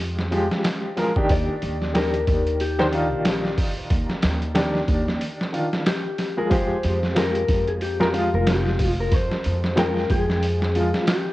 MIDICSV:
0, 0, Header, 1, 5, 480
1, 0, Start_track
1, 0, Tempo, 652174
1, 955, Time_signature, 4, 2, 24, 8
1, 8338, End_track
2, 0, Start_track
2, 0, Title_t, "Clean electric guitar"
2, 0, Program_c, 0, 27
2, 969, Note_on_c, 0, 74, 101
2, 1441, Note_off_c, 0, 74, 0
2, 1444, Note_on_c, 0, 70, 90
2, 1922, Note_on_c, 0, 67, 87
2, 1934, Note_off_c, 0, 70, 0
2, 2609, Note_off_c, 0, 67, 0
2, 4318, Note_on_c, 0, 67, 83
2, 4696, Note_on_c, 0, 70, 80
2, 4709, Note_off_c, 0, 67, 0
2, 4791, Note_off_c, 0, 70, 0
2, 4794, Note_on_c, 0, 72, 97
2, 5274, Note_off_c, 0, 72, 0
2, 5277, Note_on_c, 0, 70, 89
2, 5655, Note_on_c, 0, 68, 83
2, 5668, Note_off_c, 0, 70, 0
2, 5692, Note_off_c, 0, 68, 0
2, 5757, Note_on_c, 0, 67, 92
2, 6144, Note_on_c, 0, 70, 82
2, 6148, Note_off_c, 0, 67, 0
2, 6241, Note_on_c, 0, 67, 91
2, 6242, Note_off_c, 0, 70, 0
2, 6627, Note_on_c, 0, 70, 80
2, 6630, Note_off_c, 0, 67, 0
2, 6726, Note_off_c, 0, 70, 0
2, 6726, Note_on_c, 0, 72, 101
2, 7200, Note_off_c, 0, 72, 0
2, 7203, Note_on_c, 0, 70, 92
2, 7422, Note_off_c, 0, 70, 0
2, 7441, Note_on_c, 0, 68, 100
2, 8155, Note_off_c, 0, 68, 0
2, 8158, Note_on_c, 0, 67, 95
2, 8338, Note_off_c, 0, 67, 0
2, 8338, End_track
3, 0, Start_track
3, 0, Title_t, "Upright piano"
3, 0, Program_c, 1, 0
3, 0, Note_on_c, 1, 53, 82
3, 0, Note_on_c, 1, 56, 77
3, 0, Note_on_c, 1, 67, 91
3, 206, Note_off_c, 1, 53, 0
3, 212, Note_off_c, 1, 56, 0
3, 217, Note_off_c, 1, 67, 0
3, 230, Note_on_c, 1, 53, 92
3, 237, Note_on_c, 1, 56, 85
3, 241, Note_on_c, 1, 67, 103
3, 689, Note_off_c, 1, 53, 0
3, 692, Note_off_c, 1, 56, 0
3, 694, Note_off_c, 1, 67, 0
3, 710, Note_on_c, 1, 53, 87
3, 715, Note_on_c, 1, 56, 75
3, 721, Note_on_c, 1, 70, 92
3, 832, Note_off_c, 1, 53, 0
3, 835, Note_off_c, 1, 56, 0
3, 838, Note_off_c, 1, 70, 0
3, 852, Note_on_c, 1, 51, 90
3, 861, Note_on_c, 1, 62, 79
3, 869, Note_on_c, 1, 67, 100
3, 1409, Note_off_c, 1, 51, 0
3, 1414, Note_off_c, 1, 62, 0
3, 1418, Note_off_c, 1, 67, 0
3, 1427, Note_on_c, 1, 51, 70
3, 1433, Note_on_c, 1, 62, 64
3, 1446, Note_on_c, 1, 67, 80
3, 2018, Note_off_c, 1, 51, 0
3, 2021, Note_off_c, 1, 62, 0
3, 2027, Note_off_c, 1, 67, 0
3, 2052, Note_on_c, 1, 51, 99
3, 2055, Note_on_c, 1, 62, 83
3, 2059, Note_on_c, 1, 72, 100
3, 2129, Note_off_c, 1, 51, 0
3, 2131, Note_off_c, 1, 62, 0
3, 2133, Note_off_c, 1, 72, 0
3, 2147, Note_on_c, 1, 51, 87
3, 2154, Note_on_c, 1, 62, 79
3, 2165, Note_on_c, 1, 65, 93
3, 3327, Note_off_c, 1, 51, 0
3, 3331, Note_off_c, 1, 62, 0
3, 3336, Note_off_c, 1, 65, 0
3, 3346, Note_on_c, 1, 51, 86
3, 3357, Note_on_c, 1, 62, 82
3, 3370, Note_on_c, 1, 67, 86
3, 4047, Note_off_c, 1, 51, 0
3, 4052, Note_off_c, 1, 62, 0
3, 4059, Note_off_c, 1, 67, 0
3, 4064, Note_on_c, 1, 51, 72
3, 4068, Note_on_c, 1, 62, 61
3, 4075, Note_on_c, 1, 65, 80
3, 4273, Note_off_c, 1, 51, 0
3, 4275, Note_off_c, 1, 62, 0
3, 4279, Note_off_c, 1, 65, 0
3, 4688, Note_on_c, 1, 53, 81
3, 4691, Note_on_c, 1, 56, 77
3, 4695, Note_on_c, 1, 68, 95
3, 4773, Note_off_c, 1, 53, 0
3, 4777, Note_off_c, 1, 56, 0
3, 4784, Note_on_c, 1, 53, 96
3, 4788, Note_on_c, 1, 56, 89
3, 4793, Note_on_c, 1, 67, 105
3, 5035, Note_off_c, 1, 68, 0
3, 5230, Note_off_c, 1, 53, 0
3, 5232, Note_off_c, 1, 56, 0
3, 5235, Note_off_c, 1, 67, 0
3, 5262, Note_on_c, 1, 53, 76
3, 5271, Note_on_c, 1, 56, 63
3, 5280, Note_on_c, 1, 67, 81
3, 5855, Note_off_c, 1, 53, 0
3, 5860, Note_off_c, 1, 56, 0
3, 5865, Note_off_c, 1, 67, 0
3, 5887, Note_on_c, 1, 53, 91
3, 5889, Note_on_c, 1, 56, 85
3, 5895, Note_on_c, 1, 70, 107
3, 5965, Note_off_c, 1, 53, 0
3, 5968, Note_off_c, 1, 56, 0
3, 5971, Note_off_c, 1, 70, 0
3, 5976, Note_on_c, 1, 53, 91
3, 5987, Note_on_c, 1, 56, 82
3, 5994, Note_on_c, 1, 65, 100
3, 7162, Note_off_c, 1, 53, 0
3, 7167, Note_off_c, 1, 56, 0
3, 7171, Note_off_c, 1, 65, 0
3, 7182, Note_on_c, 1, 53, 88
3, 7189, Note_on_c, 1, 56, 78
3, 7199, Note_on_c, 1, 79, 100
3, 7885, Note_off_c, 1, 53, 0
3, 7888, Note_off_c, 1, 56, 0
3, 7893, Note_off_c, 1, 79, 0
3, 7915, Note_on_c, 1, 53, 74
3, 7918, Note_on_c, 1, 56, 70
3, 7923, Note_on_c, 1, 65, 83
3, 8119, Note_off_c, 1, 53, 0
3, 8121, Note_off_c, 1, 56, 0
3, 8123, Note_off_c, 1, 65, 0
3, 8338, End_track
4, 0, Start_track
4, 0, Title_t, "Upright bass"
4, 0, Program_c, 2, 32
4, 0, Note_on_c, 2, 41, 96
4, 349, Note_off_c, 2, 41, 0
4, 956, Note_on_c, 2, 39, 90
4, 1080, Note_off_c, 2, 39, 0
4, 1198, Note_on_c, 2, 39, 80
4, 1658, Note_off_c, 2, 39, 0
4, 1677, Note_on_c, 2, 39, 94
4, 2300, Note_off_c, 2, 39, 0
4, 2300, Note_on_c, 2, 34, 89
4, 2858, Note_off_c, 2, 34, 0
4, 2875, Note_on_c, 2, 39, 92
4, 2999, Note_off_c, 2, 39, 0
4, 3119, Note_on_c, 2, 39, 91
4, 3578, Note_off_c, 2, 39, 0
4, 3594, Note_on_c, 2, 39, 90
4, 3835, Note_off_c, 2, 39, 0
4, 4795, Note_on_c, 2, 41, 93
4, 4919, Note_off_c, 2, 41, 0
4, 5037, Note_on_c, 2, 41, 90
4, 5497, Note_off_c, 2, 41, 0
4, 5514, Note_on_c, 2, 41, 91
4, 6139, Note_on_c, 2, 29, 93
4, 6150, Note_off_c, 2, 41, 0
4, 6698, Note_off_c, 2, 29, 0
4, 6714, Note_on_c, 2, 41, 93
4, 6838, Note_off_c, 2, 41, 0
4, 6962, Note_on_c, 2, 41, 88
4, 7419, Note_off_c, 2, 41, 0
4, 7435, Note_on_c, 2, 41, 96
4, 8029, Note_off_c, 2, 41, 0
4, 8338, End_track
5, 0, Start_track
5, 0, Title_t, "Drums"
5, 138, Note_on_c, 9, 38, 44
5, 211, Note_off_c, 9, 38, 0
5, 236, Note_on_c, 9, 46, 59
5, 310, Note_off_c, 9, 46, 0
5, 379, Note_on_c, 9, 38, 55
5, 452, Note_off_c, 9, 38, 0
5, 474, Note_on_c, 9, 46, 82
5, 477, Note_on_c, 9, 38, 102
5, 548, Note_off_c, 9, 46, 0
5, 550, Note_off_c, 9, 38, 0
5, 715, Note_on_c, 9, 46, 62
5, 718, Note_on_c, 9, 38, 48
5, 789, Note_off_c, 9, 46, 0
5, 792, Note_off_c, 9, 38, 0
5, 854, Note_on_c, 9, 36, 96
5, 927, Note_off_c, 9, 36, 0
5, 951, Note_on_c, 9, 46, 86
5, 953, Note_on_c, 9, 36, 98
5, 1025, Note_off_c, 9, 46, 0
5, 1027, Note_off_c, 9, 36, 0
5, 1192, Note_on_c, 9, 46, 65
5, 1265, Note_off_c, 9, 46, 0
5, 1337, Note_on_c, 9, 38, 38
5, 1411, Note_off_c, 9, 38, 0
5, 1434, Note_on_c, 9, 46, 85
5, 1437, Note_on_c, 9, 38, 108
5, 1507, Note_off_c, 9, 46, 0
5, 1510, Note_off_c, 9, 38, 0
5, 1574, Note_on_c, 9, 42, 44
5, 1648, Note_off_c, 9, 42, 0
5, 1674, Note_on_c, 9, 36, 92
5, 1674, Note_on_c, 9, 46, 63
5, 1747, Note_off_c, 9, 36, 0
5, 1748, Note_off_c, 9, 46, 0
5, 1817, Note_on_c, 9, 42, 41
5, 1890, Note_off_c, 9, 42, 0
5, 1914, Note_on_c, 9, 46, 81
5, 1988, Note_off_c, 9, 46, 0
5, 2057, Note_on_c, 9, 38, 50
5, 2130, Note_off_c, 9, 38, 0
5, 2153, Note_on_c, 9, 46, 66
5, 2227, Note_off_c, 9, 46, 0
5, 2392, Note_on_c, 9, 46, 85
5, 2395, Note_on_c, 9, 38, 111
5, 2465, Note_off_c, 9, 46, 0
5, 2468, Note_off_c, 9, 38, 0
5, 2538, Note_on_c, 9, 38, 40
5, 2611, Note_off_c, 9, 38, 0
5, 2632, Note_on_c, 9, 36, 97
5, 2633, Note_on_c, 9, 46, 80
5, 2706, Note_off_c, 9, 36, 0
5, 2707, Note_off_c, 9, 46, 0
5, 2873, Note_on_c, 9, 36, 105
5, 2874, Note_on_c, 9, 46, 81
5, 2946, Note_off_c, 9, 36, 0
5, 2947, Note_off_c, 9, 46, 0
5, 3015, Note_on_c, 9, 38, 45
5, 3089, Note_off_c, 9, 38, 0
5, 3109, Note_on_c, 9, 46, 78
5, 3112, Note_on_c, 9, 38, 104
5, 3183, Note_off_c, 9, 46, 0
5, 3186, Note_off_c, 9, 38, 0
5, 3253, Note_on_c, 9, 42, 41
5, 3326, Note_off_c, 9, 42, 0
5, 3350, Note_on_c, 9, 46, 79
5, 3353, Note_on_c, 9, 38, 110
5, 3423, Note_off_c, 9, 46, 0
5, 3426, Note_off_c, 9, 38, 0
5, 3496, Note_on_c, 9, 38, 37
5, 3569, Note_off_c, 9, 38, 0
5, 3592, Note_on_c, 9, 36, 93
5, 3592, Note_on_c, 9, 46, 61
5, 3665, Note_off_c, 9, 36, 0
5, 3666, Note_off_c, 9, 46, 0
5, 3740, Note_on_c, 9, 38, 42
5, 3814, Note_off_c, 9, 38, 0
5, 3834, Note_on_c, 9, 46, 84
5, 3908, Note_off_c, 9, 46, 0
5, 3981, Note_on_c, 9, 38, 49
5, 4054, Note_off_c, 9, 38, 0
5, 4076, Note_on_c, 9, 46, 62
5, 4150, Note_off_c, 9, 46, 0
5, 4217, Note_on_c, 9, 38, 55
5, 4290, Note_off_c, 9, 38, 0
5, 4313, Note_on_c, 9, 46, 88
5, 4316, Note_on_c, 9, 38, 111
5, 4386, Note_off_c, 9, 46, 0
5, 4389, Note_off_c, 9, 38, 0
5, 4550, Note_on_c, 9, 46, 63
5, 4553, Note_on_c, 9, 38, 48
5, 4624, Note_off_c, 9, 46, 0
5, 4627, Note_off_c, 9, 38, 0
5, 4790, Note_on_c, 9, 36, 106
5, 4791, Note_on_c, 9, 46, 84
5, 4864, Note_off_c, 9, 36, 0
5, 4864, Note_off_c, 9, 46, 0
5, 5029, Note_on_c, 9, 46, 67
5, 5103, Note_off_c, 9, 46, 0
5, 5174, Note_on_c, 9, 38, 41
5, 5248, Note_off_c, 9, 38, 0
5, 5270, Note_on_c, 9, 46, 85
5, 5273, Note_on_c, 9, 38, 121
5, 5344, Note_off_c, 9, 46, 0
5, 5346, Note_off_c, 9, 38, 0
5, 5410, Note_on_c, 9, 42, 47
5, 5484, Note_off_c, 9, 42, 0
5, 5508, Note_on_c, 9, 46, 72
5, 5509, Note_on_c, 9, 36, 90
5, 5582, Note_off_c, 9, 36, 0
5, 5582, Note_off_c, 9, 46, 0
5, 5649, Note_on_c, 9, 42, 42
5, 5723, Note_off_c, 9, 42, 0
5, 5749, Note_on_c, 9, 46, 82
5, 5822, Note_off_c, 9, 46, 0
5, 5894, Note_on_c, 9, 38, 53
5, 5967, Note_off_c, 9, 38, 0
5, 5992, Note_on_c, 9, 46, 66
5, 6065, Note_off_c, 9, 46, 0
5, 6232, Note_on_c, 9, 46, 86
5, 6235, Note_on_c, 9, 38, 109
5, 6306, Note_off_c, 9, 46, 0
5, 6309, Note_off_c, 9, 38, 0
5, 6377, Note_on_c, 9, 38, 39
5, 6451, Note_off_c, 9, 38, 0
5, 6471, Note_on_c, 9, 36, 97
5, 6472, Note_on_c, 9, 46, 80
5, 6544, Note_off_c, 9, 36, 0
5, 6546, Note_off_c, 9, 46, 0
5, 6710, Note_on_c, 9, 36, 101
5, 6710, Note_on_c, 9, 46, 87
5, 6783, Note_off_c, 9, 46, 0
5, 6784, Note_off_c, 9, 36, 0
5, 6855, Note_on_c, 9, 38, 45
5, 6929, Note_off_c, 9, 38, 0
5, 6949, Note_on_c, 9, 46, 67
5, 7022, Note_off_c, 9, 46, 0
5, 7094, Note_on_c, 9, 38, 46
5, 7167, Note_off_c, 9, 38, 0
5, 7191, Note_on_c, 9, 46, 86
5, 7194, Note_on_c, 9, 38, 111
5, 7265, Note_off_c, 9, 46, 0
5, 7268, Note_off_c, 9, 38, 0
5, 7337, Note_on_c, 9, 38, 36
5, 7411, Note_off_c, 9, 38, 0
5, 7432, Note_on_c, 9, 36, 101
5, 7434, Note_on_c, 9, 46, 69
5, 7506, Note_off_c, 9, 36, 0
5, 7508, Note_off_c, 9, 46, 0
5, 7579, Note_on_c, 9, 38, 41
5, 7653, Note_off_c, 9, 38, 0
5, 7675, Note_on_c, 9, 46, 85
5, 7748, Note_off_c, 9, 46, 0
5, 7818, Note_on_c, 9, 38, 50
5, 7891, Note_off_c, 9, 38, 0
5, 7913, Note_on_c, 9, 46, 65
5, 7987, Note_off_c, 9, 46, 0
5, 8054, Note_on_c, 9, 38, 58
5, 8127, Note_off_c, 9, 38, 0
5, 8150, Note_on_c, 9, 46, 86
5, 8153, Note_on_c, 9, 38, 108
5, 8224, Note_off_c, 9, 46, 0
5, 8227, Note_off_c, 9, 38, 0
5, 8338, End_track
0, 0, End_of_file